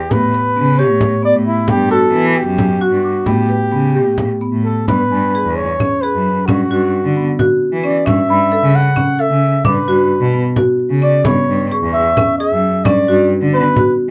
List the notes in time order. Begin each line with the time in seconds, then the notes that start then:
Already playing: G4
0.11 A2 B3 B4, frame drum
0.34 B4
0.56 C#3 B3
0.79 G4 C#5
0.90 A2
1.01 frame drum
1.23 B3 D5
1.35 A2
1.46 E4, frame drum
1.68 G2 B3 G4, frame drum
1.91 F#4 A4
2.13 E3 B3
2.29 A4
2.36 G4
2.46 F#2
2.58 frame drum
2.81 F#4
2.91 G2
3.04 D6, frame drum
3.25 A2 B3 G4, frame drum
3.49 B4
3.71 C#3 B3
3.95 G4
4.05 A2
4.18 frame drum
4.41 B3, frame drum
4.52 A2
4.64 A4, frame drum
4.87 G2 B3 B4, frame drum
5.10 G2 G#5
5.35 G#4
5.45 E2
5.56 C#5
5.80 C#4, frame drum
6.02 G#4 B4
6.14 F#2
6.46 G2 C#4 F#4, frame drum
6.71 G2 F#4
7.04 D3
7.16 B3
7.39 F#4, frame drum
7.72 E3
7.84 C#4 D5
8.06 G2 C#4 E5, frame drum
8.29 G2 B5
8.52 A4
8.62 C#3
8.76 F#5
8.96 C#4, frame drum
9.19 A4 E5
9.30 C#3
9.64 G2 D4 B4, frame drum
9.87 G2 F#4
10.21 B2
10.33 B3
10.56 F#4, frame drum
10.79 frame drum
10.90 C#3
11.02 C#4 D5
11.24 G2 B3 C#5, frame drum
11.48 G2
11.72 G#4 C#6
11.82 E2
11.94 E5
12.17 C#4, frame drum
12.38 G#4 E5
12.52 F#2
12.85 G2 C#4 D5, frame drum
13.08 G2 F#4
13.41 D3
13.54 B3 B4
13.76 F#4, frame drum